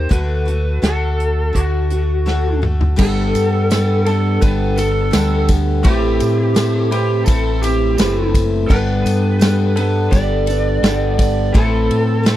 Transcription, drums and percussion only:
0.11 kick, closed hi-hat
0.48 closed hi-hat
0.83 snare, closed hi-hat
1.20 closed hi-hat
1.55 kick, closed hi-hat
1.90 closed hi-hat
2.27 snare
2.63 mid tom
2.81 floor tom
2.99 kick, crash, tambourine
3.35 ride, tambourine
3.71 snare, ride, tambourine
4.06 ride, tambourine
4.42 kick, ride, tambourine
4.78 ride, tambourine
5.13 snare, ride, tambourine
5.48 kick, ride, tambourine
5.84 kick, ride, tambourine
6.20 ride, tambourine
6.56 snare, ride, tambourine
6.92 ride, tambourine
7.26 kick, ride, tambourine
7.63 ride, tambourine
7.98 snare, ride, tambourine
8.34 kick, ride, tambourine
8.70 kick, tambourine, crash
9.06 ride, tambourine
9.41 snare, ride, tambourine
9.77 ride, tambourine
10.12 kick, ride, tambourine
10.47 ride, tambourine
10.84 snare, ride, tambourine
11.19 kick, ride, tambourine
11.55 kick, ride, tambourine
11.91 ride
12.26 snare, ride, tambourine

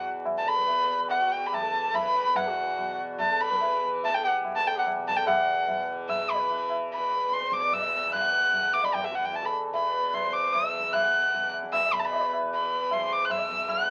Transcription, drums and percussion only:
0.25 tabla na, tabla ge
0.46 tabla te
0.57 tabla ge
0.68 tabla tin
1.10 tabla tin
1.53 tabla na, tabla ge
1.74 tabla te
1.94 tabla na, tabla ge
2.15 tabla te
2.35 tabla na, tabla ge
2.78 tabla tin, tabla ge
3.19 tabla na, tabla ge
3.41 tabla te
3.51 tabla ge
3.61 tabla tin
4.04 tabla tin
4.45 tabla na, tabla ge
4.86 tabla na, tabla ge
5.07 tabla ge
5.27 tabla na, tabla ge
5.68 tabla tin, tabla ge
6.09 tabla na, tabla ge
6.30 tabla ge
6.50 tabla tin
6.70 tabla na
6.90 tabla tin
7.32 tabla te
7.42 tabla te
7.52 tabla ke
7.62 tabla te
7.72 tabla tin, tabla ge
8.13 tabla na, tabla ge
8.53 tabla tin, tabla ge
8.74 tabla na
8.84 tabla ke
8.94 tabla na, tabla ge
9.14 tabla te
9.23 tabla ge
9.33 tabla tin
9.74 tabla tin
10.14 tabla na, tabla ge
10.54 tabla na, tabla ge
10.74 tabla ge
10.94 tabla na, tabla ge
11.34 tabla tin, tabla ge
11.53 tabla na
11.63 tabla ke
11.73 tabla na, tabla ge
11.93 tabla ge
12.12 tabla tin
12.33 tabla na
12.52 tabla tin
12.91 tabla na, tabla ge
13.30 tabla na, tabla ge
13.50 tabla ge
13.69 tabla na, tabla ge

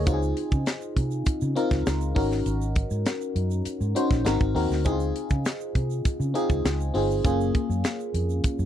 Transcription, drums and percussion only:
0.07 kick, closed hi-hat, shaker
0.22 shaker
0.37 closed hi-hat
0.52 kick, shaker
0.66 snare, closed hi-hat, shaker
0.81 shaker
0.96 kick, closed hi-hat
1.11 shaker
1.26 kick, closed hi-hat, shaker
1.41 shaker
1.56 closed hi-hat
1.71 kick, snare, shaker
1.86 snare, closed hi-hat, shaker
2.01 shaker
2.16 kick, open hi-hat
2.32 snare, shaker
2.46 closed hi-hat, shaker
2.62 shaker
2.76 kick, closed hi-hat
2.91 shaker
3.06 snare, closed hi-hat, shaker
3.21 shaker
3.36 closed hi-hat
3.51 shaker
3.65 closed hi-hat, shaker
3.81 shaker
3.96 closed hi-hat
4.11 kick, snare, shaker
4.26 snare, closed hi-hat, shaker
4.40 kick, shaker
4.56 open hi-hat
4.71 snare, shaker
4.85 kick, closed hi-hat, shaker
5.00 shaker
5.16 closed hi-hat
5.30 kick, shaker
5.45 snare, closed hi-hat, shaker
5.61 shaker
5.75 kick, closed hi-hat
5.90 shaker
6.05 kick, closed hi-hat, shaker
6.21 shaker
6.35 closed hi-hat
6.50 kick, shaker
6.66 snare, closed hi-hat, shaker
6.80 shaker
6.95 open hi-hat
7.11 shaker
7.25 kick, closed hi-hat, shaker
7.41 shaker
7.55 kick, closed hi-hat
7.71 shaker
7.84 snare, closed hi-hat, shaker
8.00 shaker
8.14 closed hi-hat
8.30 shaker
8.44 kick, closed hi-hat, shaker
8.59 shaker

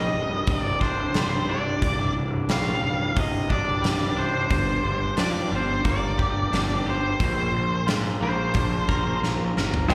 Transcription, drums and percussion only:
0.47 kick, open hi-hat
0.81 kick, snare
1.14 snare, open hi-hat
1.82 kick, open hi-hat
2.49 snare, open hi-hat
3.16 kick, open hi-hat
3.50 kick
3.84 snare, open hi-hat
4.50 kick, open hi-hat
5.17 snare, open hi-hat
5.85 kick, open hi-hat
6.19 kick
6.53 snare, open hi-hat
7.20 kick, open hi-hat
7.88 snare, open hi-hat
8.54 kick, open hi-hat
8.89 kick, snare
9.23 snare
9.57 snare
9.74 floor tom
9.90 kick, crash

